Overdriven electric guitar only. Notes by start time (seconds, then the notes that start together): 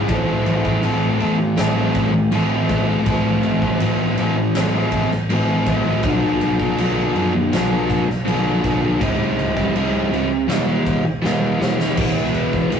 Already playing: E4
0.08 A2 E3 A3 C4 E4 A4
0.64 A3 C4 E4 A4
0.82 A2 E3 A3 C4 E4 A4
1.19 A3 C4 E4 A4
1.39 muted overdriven electric guitar stroke
1.57 A3 C4 E4 A4
1.76 A3 C4 E4 A4
2.14 muted overdriven electric guitar stroke
2.32 A2 E3 A3 C4 E4 A4
2.69 A3 C4 E4 A4
2.88 A3 C4 E4 A4
3.06 A2 E3 A3 C4 E4 A4
3.63 A3 C4 E4 A4
3.81 A2 E3 A3 C4 E4 A4
4.18 A3 C4 E4 A4
4.38 muted overdriven electric guitar stroke
4.56 A3 C4 E4 A4
4.74 A3 C4 E4 A4
5.12 muted overdriven electric guitar stroke
5.30 A2 E3 A3 C4 E4 A4
5.67 A3 C4 E4 A4
5.85 A3 C4 E4 A4
6.04 B2 D#3 F#3 B3 D#4 A4
6.60 F#3 B3 D#4 A4
6.78 B2 D#3 F#3 B3 D#4 A4
7.15 F#3 B3 D#4 A4
7.35 muted overdriven electric guitar stroke
7.52 F#3 B3 D#4 A4
7.70 F#3 B3 D#4 A4
8.08 muted overdriven electric guitar stroke
8.25 B2 D#3 F#3 B3 D#4 A4
8.64 F#3 B3 D#4 A4
8.82 F#3 B3 D#4 A4
9.00 C#3 G#3 C#4 E4
9.56 G#3 C#4 E4
9.75 C#3 G#3 C#4 E4
10.12 C#3 G#3 C#4 E4
10.31 muted overdriven electric guitar stroke
10.48 E3 G#3 B3 E4
10.66 G#3 B3 E4
11.05 muted overdriven electric guitar stroke
11.22 E3 G#3 B3 E4
11.59 E3 G#3 B3 E4
11.78 G#3 B3 E4
11.96 E3 G#3 B3 E4
12.71 E3 G#3 B3 E4